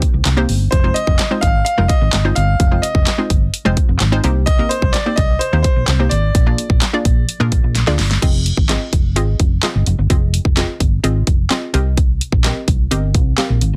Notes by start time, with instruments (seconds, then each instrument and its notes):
Already playing: synth pluck A#3 C4 D#4 G4 C5
0.02 kick, closed hi-hat
0.14 fingered electric bass C2
0.25 fingered electric bass C2, snare, clap, closed hi-hat
0.37 synth pluck A#3 C4 D#4 G4 C5
0.49 fingered electric bass G1, open hi-hat
0.71 fingered electric bass F1, grand piano C5, kick, closed hi-hat
0.84 synth pluck G#3 C4 D#4 F4 C5
0.94 grand piano D#5, closed hi-hat
1.07 fingered electric bass F1, kick
1.19 snare, clap, closed hi-hat
1.31 synth pluck G#3 C4 D#4 F4 C5
1.41 fingered electric bass G#1, grand piano F5, kick, closed hi-hat
1.65 grand piano F5, closed hi-hat
1.78 fingered electric bass F1, synth pluck G#3 C4 D#4 F4 A#4
1.88 grand piano D#5, kick, closed hi-hat
2.01 fingered electric bass G#1
2.13 fingered electric bass G1, snare, clap, closed hi-hat
2.25 synth pluck G#3 C4 D#4 F4 C5
2.35 fingered electric bass G1, grand piano F5, closed hi-hat
2.60 fingered electric bass F1, kick, closed hi-hat
2.71 synth pluck G#3 C4 D#4 F4 C5
2.82 grand piano D#5, closed hi-hat
2.95 fingered electric bass F1, kick
3.07 snare, clap, closed hi-hat
3.18 synth pluck G#3 C4 D#4 F4 C5
3.30 fingered electric bass G1, kick, closed hi-hat
3.54 closed hi-hat
3.65 fingered electric bass F1, synth pluck G#3 C4 D#4 F4 C5
3.77 kick, closed hi-hat
3.89 fingered electric bass F1
4.00 fingered electric bass G#1, snare, clap, closed hi-hat
4.12 synth pluck G#3 C4 D#4 F4 C5
4.24 fingered electric bass C2, synth pluck A#3 C4 D#4 G4 C5, closed hi-hat
4.46 grand piano D#5, kick, closed hi-hat
4.59 synth pluck A#3 C4 D#4 G4 A#4
4.69 grand piano C5, closed hi-hat
4.82 fingered electric bass C2, kick
4.92 grand piano D5, snare, clap, closed hi-hat
5.06 synth pluck A#3 C4 D#4 G4 C5
5.16 fingered electric bass C2, grand piano D#5, kick, closed hi-hat
5.39 grand piano C5, closed hi-hat
5.53 fingered electric bass D#2, synth pluck A#3 C4 D#4 G4 C5
5.63 grand piano C5, kick, closed hi-hat
5.76 fingered electric bass A#1
5.86 fingered electric bass C2, grand piano C5, snare, clap, closed hi-hat
5.99 synth pluck A#3 C4 D#4 G4 C5
6.09 fingered electric bass G#1, grand piano D5, closed hi-hat
6.35 fingered electric bass A#1, kick, closed hi-hat
6.46 synth pluck A#3 D4 F4 G#4 D5
6.58 closed hi-hat
6.70 fingered electric bass A#1, kick
6.81 snare, clap, closed hi-hat
6.93 synth pluck A#3 D4 F4 G#4 D5
7.05 fingered electric bass A#1, kick, closed hi-hat
7.29 closed hi-hat
7.40 fingered electric bass A#2, synth pluck A#3 D4 F4 G#4 A#4
7.52 fingered electric bass A#1, kick, closed hi-hat
7.64 fingered electric bass A#1
7.75 snare, closed hi-hat
7.87 fingered electric bass D2, synth pluck A#3 D4 F4 G#4 D5, snare
7.99 fingered electric bass G1, snare, open hi-hat
8.11 snare
8.22 fingered electric bass F1, synth pluck C4 F4 G#4 D#5, kick, closed hi-hat, crash
8.46 closed hi-hat
8.57 fingered electric bass G#1, kick
8.69 synth pluck C4 F4 G#4 D#5, snare, clap, closed hi-hat
8.93 fingered electric bass F1, kick, closed hi-hat
9.16 fingered electric bass G#1, synth pluck C4 F4 G#4 D#5, closed hi-hat
9.40 fingered electric bass F1, kick, closed hi-hat
9.63 synth pluck C4 F4 G#4 D#5, snare, clap, closed hi-hat
9.75 fingered electric bass G1
9.86 fingered electric bass F1, closed hi-hat
9.99 fingered electric bass G1
10.10 fingered electric bass F1, synth pluck C4 F4 G#4 D#5, kick, closed hi-hat
10.34 closed hi-hat
10.45 fingered electric bass F1, kick
10.57 synth pluck C4 F4 G#4 D#5, snare, clap, closed hi-hat
10.80 fingered electric bass G1, kick, closed hi-hat
11.04 fingered electric bass G#1, synth pluck C4 F4 G#4 D#5, closed hi-hat
11.27 fingered electric bass F1, kick, closed hi-hat
11.50 synth pluck C4 F4 G#4 D#5, snare, clap, closed hi-hat
11.74 fingered electric bass C2, synth pluck C4 G4 A#4 D#5, closed hi-hat
11.97 kick, closed hi-hat
12.21 closed hi-hat
12.32 fingered electric bass A#1, kick
12.44 synth pluck C4 G4 A#4 D#5, snare, clap, closed hi-hat
12.68 fingered electric bass C2, kick, closed hi-hat
12.91 fingered electric bass G1, synth pluck C4 G4 A#4 D#5, closed hi-hat
13.14 fingered electric bass C2, kick, closed hi-hat
13.38 synth pluck C4 G4 A#4 F5, snare, clap, closed hi-hat
13.50 fingered electric bass A#1
13.61 fingered electric bass G#1, closed hi-hat
13.73 fingered electric bass A#1